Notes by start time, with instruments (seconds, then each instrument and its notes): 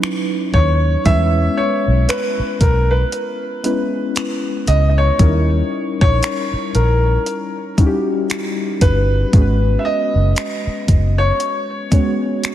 Already playing: synth keys F#3 C#4 D#4 E4 B4
0.03 finger snap
0.54 fingered electric bass D#2, grand piano C#5, kick
1.05 fingered electric bass E2, synth keys G3 B3 C#4 E4 B4, grand piano E5, kick, closed hi-hat
1.11 synth keys G#3
1.57 grand piano C#5
1.88 fingered electric bass B1
2.09 grand piano B4, finger snap, closed hi-hat
2.39 muted fingered electric bass stroke
2.61 fingered electric bass B1, grand piano A#4, kick, closed hi-hat
2.91 grand piano B4
3.12 closed hi-hat
3.63 synth keys G#3 B3 C#4 E4 B4, closed hi-hat
4.16 finger snap, closed hi-hat
4.67 fingered electric bass C#2, grand piano D#5, closed hi-hat
4.89 grand piano D#5
4.98 grand piano C#5
5.19 fingered electric bass D#2, synth keys G3 C#4 D#4 E4 A#4, kick, closed hi-hat
6.01 fingered electric bass A#1, grand piano C#5, kick
6.23 finger snap, closed hi-hat
6.53 muted fingered electric bass stroke
6.75 fingered electric bass A#1, grand piano A#4, closed hi-hat
7.26 closed hi-hat
7.77 synth keys G3 C#4 D#4 E4 F#4, kick, closed hi-hat
7.86 synth keys G4
8.30 finger snap, closed hi-hat
8.81 fingered electric bass G1, grand piano B4, kick, closed hi-hat
9.32 fingered electric bass G#1, synth keys G#3 B3 C#4 F#4 G#4, kick, closed hi-hat
9.41 synth keys B4
9.79 grand piano E5
9.85 grand piano D#5
10.15 fingered electric bass F#1
10.36 finger snap, closed hi-hat
10.67 muted fingered electric bass stroke
10.88 fingered electric bass F#1, kick, closed hi-hat
11.18 grand piano C#5
11.40 closed hi-hat
11.91 synth keys G#3 B3 C#4 F#4 C#5, kick, closed hi-hat
12.44 finger snap, closed hi-hat